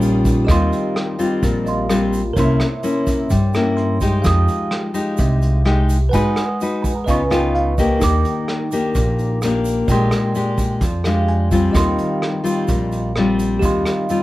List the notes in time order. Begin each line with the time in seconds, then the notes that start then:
Already playing: A#1 A#2 G3 C#4 D#4 F4 G4 C#5 F5 G5 D#6
0.02 closed hi-hat, shaker
0.25 kick, closed hi-hat, shaker
0.45 D#2 D#3 G4 D#5, kick, cross-stick, closed hi-hat
0.49 G3 C4 F4 F5 C6, shaker
0.72 closed hi-hat, shaker
0.96 cross-stick, closed hi-hat
1.19 G3 C4 F4, closed hi-hat, shaker
1.43 A#1 A#2, kick, closed hi-hat, shaker
1.65 G4 D#5 F5 C6, closed hi-hat, shaker
1.89 G3 C4 F4, cross-stick, closed hi-hat, shaker
2.13 closed hi-hat, shaker
2.33 C2 C3 A#4 C#5 E5, kick, closed hi-hat, shaker
2.37 A#3 C#4 E4 C6
2.60 cross-stick, closed hi-hat, shaker
2.83 A#3 C#4 E4, closed hi-hat, shaker
3.07 E5, kick, closed hi-hat, shaker
3.30 G2 G3 G5, kick, closed hi-hat, shaker
3.53 A#3 C#4 E4, cross-stick, closed hi-hat, shaker
3.77 C6, closed hi-hat
4.01 G#3 D#4 G4, kick, closed hi-hat, shaker
4.22 F2 F3 F5 G5, kick, cross-stick, closed hi-hat, shaker
4.27 D#6
4.48 closed hi-hat, shaker
4.71 cross-stick, closed hi-hat
4.94 G#3 D#4 G4, closed hi-hat, shaker
5.17 C2 C3, kick, closed hi-hat, shaker
5.42 closed hi-hat, shaker
5.65 G#3 D#4 G4, cross-stick, closed hi-hat
5.89 closed hi-hat, shaker
6.09 B4 F#5 G#5, kick, closed hi-hat, shaker
6.13 G#2 G#3 D#4 F#4 B4 D#6
6.36 cross-stick, closed hi-hat, shaker
6.61 D#4 F#4 B4, closed hi-hat, shaker
6.82 B5, kick, closed hi-hat, shaker
6.95 A#5
7.04 C#2 C#3 B4 D#5 F5 G#5, kick, closed hi-hat, shaker
7.09 B3 D#4 F4 C#6
7.30 B3 D#4 F4 G5, cross-stick, closed hi-hat, shaker
7.55 F5, closed hi-hat
7.78 A#3 D4 G4 D#5, kick, closed hi-hat, shaker
7.98 D#2 D#4 A#4 G5, shaker
8.02 D#3 D6, kick, cross-stick, closed hi-hat
8.25 closed hi-hat, shaker
8.48 cross-stick, closed hi-hat
8.72 A#3 D4 G4, closed hi-hat, shaker
8.95 A#1 A#2, kick, closed hi-hat, shaker
9.18 closed hi-hat, shaker
9.42 A#3 D4 G4, cross-stick, closed hi-hat, shaker
9.65 closed hi-hat, shaker
9.88 A#1 A#2 G#3 D4 G4 D5 G5 C6, kick, closed hi-hat, shaker
10.11 cross-stick, closed hi-hat, shaker
10.35 G#3 D4 G4, closed hi-hat, shaker
10.58 kick, closed hi-hat, shaker
10.81 F2 F3, kick, closed hi-hat, shaker
11.04 G#3 D4 G4 F5, cross-stick, closed hi-hat, shaker
11.28 G#5, closed hi-hat
11.51 G3 C4 F4, kick, closed hi-hat, shaker
11.71 D#2 D#3 G4 D#5 F5, kick, cross-stick, closed hi-hat, shaker
11.77 C6
11.98 closed hi-hat, shaker
12.22 cross-stick, closed hi-hat
12.44 G3 C4 F4, closed hi-hat, shaker
12.68 A#1 A#2, kick, closed hi-hat, shaker
12.92 closed hi-hat, shaker
13.16 G3 C4 F4, cross-stick, closed hi-hat
13.39 closed hi-hat, shaker
13.59 D#2 D#3 G4 D#5 F5, kick, closed hi-hat, shaker
13.65 C6
13.86 cross-stick, closed hi-hat, shaker
14.09 G3 C4 F4, closed hi-hat, shaker